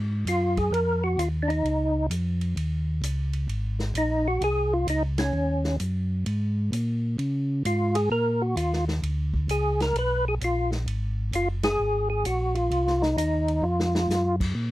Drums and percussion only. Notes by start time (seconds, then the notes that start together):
0.27 hi-hat pedal, ride
0.57 kick, ride
0.74 ride
1.19 hi-hat pedal, ride
1.50 ride
1.65 ride
2.11 hi-hat pedal, ride
2.41 ride
2.57 ride
3.03 hi-hat pedal, ride
3.33 ride
3.49 ride
3.79 snare
3.95 hi-hat pedal, ride
4.42 ride
4.88 hi-hat pedal, ride
5.18 snare, ride
5.64 snare
5.80 hi-hat pedal, ride
6.26 ride
6.73 hi-hat pedal, ride
7.19 ride
7.65 hi-hat pedal, ride
7.95 ride
8.57 hi-hat pedal, ride
8.73 snare
8.88 snare
9.03 ride
9.34 kick
9.49 hi-hat pedal, ride
9.80 snare, ride
9.96 ride
10.41 hi-hat pedal, ride
10.72 snare
10.88 ride
11.33 hi-hat pedal, ride
11.63 snare, ride
12.25 hi-hat pedal, ride
12.55 ride
12.71 ride
12.87 snare
13.03 snare
13.18 hi-hat pedal, ride
13.48 ride
13.80 snare
13.95 snare
14.10 snare, hi-hat pedal
14.40 kick, crash